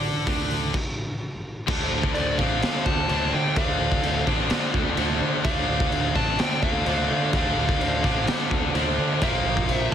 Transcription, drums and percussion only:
0.04 open hi-hat
0.27 kick, open hi-hat
0.51 open hi-hat
0.74 kick, crash
1.68 kick, crash
2.03 kick
2.15 crash
2.39 kick, snare
2.62 snare, crash
2.86 kick
3.09 crash
3.56 kick, crash
3.92 kick
4.03 crash
4.27 kick, snare
4.50 snare, crash
4.74 kick
4.97 crash
5.44 kick, crash
5.80 kick
5.92 crash
6.16 kick
6.39 snare, crash
6.63 kick
6.86 crash
7.33 kick, crash
7.69 kick
7.81 crash
8.04 kick, snare
8.27 snare, crash
8.51 kick
8.75 crash
9.22 kick, crash
9.57 kick
9.69 crash

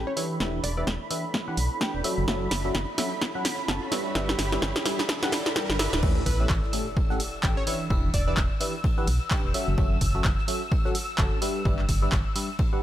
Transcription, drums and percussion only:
0.17 open hi-hat
0.40 kick, snare
0.64 kick, open hi-hat
0.87 kick, snare
1.11 open hi-hat
1.34 kick, snare
1.57 open hi-hat
1.81 kick, snare
2.04 open hi-hat
2.28 kick, snare
2.51 kick, snare, open hi-hat
2.75 kick, snare
2.98 snare, open hi-hat
3.22 kick, snare
3.45 snare, open hi-hat
3.68 kick, snare
3.92 snare, open hi-hat
4.15 kick, snare
4.29 snare
4.39 kick, snare, open hi-hat
4.52 snare
4.62 kick, snare
4.76 snare
4.86 snare, open hi-hat
4.99 snare
5.09 kick, snare
5.23 snare
5.32 snare, open hi-hat
5.46 snare
5.56 kick, snare
5.70 snare
5.79 snare, open hi-hat
5.93 snare
6.03 kick, crash, ride
6.26 kick, open hi-hat, ride
6.49 kick, snare, clap, ride
6.63 snare
6.73 open hi-hat, ride
6.96 kick, ride
7.11 snare
7.20 open hi-hat, ride
7.43 kick, snare, clap, ride
7.67 open hi-hat, ride
7.90 kick, ride
8.05 ride
8.13 kick, open hi-hat, ride
8.37 kick, snare, clap, ride
8.60 open hi-hat, ride
8.74 ride
8.84 kick, ride
9.07 open hi-hat, ride
9.31 kick, snare, clap, ride
9.54 open hi-hat, ride
9.78 kick, ride
10.01 kick, open hi-hat, ride
10.24 kick, snare, clap, ride
10.38 snare
10.48 open hi-hat, ride
10.71 kick, ride
10.85 snare
10.95 open hi-hat, ride
11.18 kick, snare, clap, ride
11.42 open hi-hat, ride
11.65 kick, ride
11.79 clap, ride
11.89 kick, open hi-hat, ride
12.12 kick, snare, clap, ride
12.35 open hi-hat, ride
12.49 ride
12.59 kick, ride

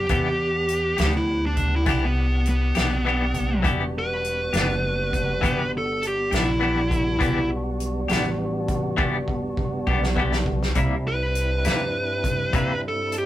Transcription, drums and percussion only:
0.09 kick, closed hi-hat
0.68 closed hi-hat
0.98 snare, closed hi-hat
1.57 kick, closed hi-hat
1.86 kick, snare, closed hi-hat
2.46 closed hi-hat
2.75 snare, closed hi-hat
3.34 kick, closed hi-hat
3.64 kick, closed hi-hat
4.24 closed hi-hat
4.53 snare, closed hi-hat
5.13 kick, closed hi-hat
5.43 kick, closed hi-hat
6.03 closed hi-hat
6.32 snare, closed hi-hat
6.91 kick, closed hi-hat
7.21 kick, closed hi-hat
7.80 closed hi-hat
8.09 snare, closed hi-hat
8.68 kick, closed hi-hat
8.98 kick
9.28 kick
9.57 kick
9.87 kick
10.03 snare
10.17 kick
10.33 snare
10.46 kick
10.63 snare
10.75 kick, closed hi-hat
11.35 closed hi-hat
11.65 snare, closed hi-hat
12.24 kick, closed hi-hat
12.53 kick, closed hi-hat
13.12 closed hi-hat

